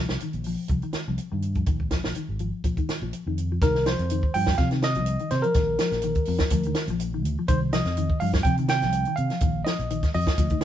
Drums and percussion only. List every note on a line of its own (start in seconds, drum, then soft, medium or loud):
0.09 snare medium
0.09 closed hi-hat soft
0.20 closed hi-hat medium
0.33 closed hi-hat soft
0.44 open hi-hat medium
0.68 kick medium
0.68 closed hi-hat medium
0.82 closed hi-hat soft
0.93 snare medium
0.93 closed hi-hat soft
1.18 closed hi-hat medium
1.42 closed hi-hat soft
1.55 kick medium
1.55 closed hi-hat soft
1.66 kick medium
1.66 closed hi-hat medium
1.80 kick medium
1.91 kick medium
1.91 snare medium
1.91 closed hi-hat soft
2.04 snare medium
2.15 closed hi-hat medium
2.39 closed hi-hat soft
2.64 kick medium
2.64 closed hi-hat medium
2.77 kick medium
2.77 closed hi-hat soft
2.89 snare medium
2.89 closed hi-hat soft
3.13 closed hi-hat medium
3.38 closed hi-hat soft
3.62 kick loud
3.62 snare soft
3.62 closed hi-hat medium
3.75 snare soft
3.86 snare medium
3.86 closed hi-hat medium
3.99 closed hi-hat soft
4.10 closed hi-hat medium
4.23 kick medium
4.34 open hi-hat medium
4.47 kick medium
4.47 snare medium
4.58 kick medium
4.58 snare soft
4.58 closed hi-hat medium
4.71 snare soft
4.71 closed hi-hat soft
4.82 snare medium
4.82 closed hi-hat medium
4.95 closed hi-hat soft
5.06 closed hi-hat medium
5.19 closed hi-hat soft
5.31 snare soft
5.31 closed hi-hat medium
5.43 closed hi-hat soft
5.54 kick loud
5.54 snare soft
5.54 closed hi-hat medium
5.79 snare medium
5.79 closed hi-hat medium
5.92 snare soft
5.92 closed hi-hat soft
6.02 closed hi-hat medium
6.15 kick medium
6.15 closed hi-hat soft
6.25 open hi-hat medium
6.39 kick medium
6.39 snare medium
6.39 closed hi-hat soft
6.50 kick medium
6.50 closed hi-hat medium
6.63 closed hi-hat soft
6.75 snare medium
6.75 closed hi-hat medium
6.88 closed hi-hat soft
7.00 closed hi-hat medium
7.25 closed hi-hat medium
7.48 kick loud
7.48 closed hi-hat medium
7.73 snare medium
7.73 closed hi-hat medium
7.85 snare soft
7.85 closed hi-hat soft
7.97 closed hi-hat medium
8.10 kick medium
8.20 open hi-hat medium
8.33 kick medium
8.33 snare medium
8.44 kick medium
8.44 closed hi-hat medium
8.57 closed hi-hat soft
8.68 snare medium
8.68 closed hi-hat medium
8.82 snare soft
8.82 closed hi-hat soft
8.92 closed hi-hat medium
9.05 closed hi-hat soft
9.17 closed hi-hat medium
9.30 snare soft
9.30 closed hi-hat soft
9.40 kick loud
9.40 closed hi-hat medium
9.66 snare medium
9.66 closed hi-hat medium
9.79 closed hi-hat soft
9.90 closed hi-hat medium
10.03 kick medium
10.03 snare soft
10.03 closed hi-hat soft
10.14 open hi-hat medium
10.27 kick medium
10.27 snare medium
10.27 closed hi-hat soft
10.38 kick medium
10.38 closed hi-hat medium
10.50 kick medium
10.50 closed hi-hat soft
10.61 snare medium
10.61 closed hi-hat medium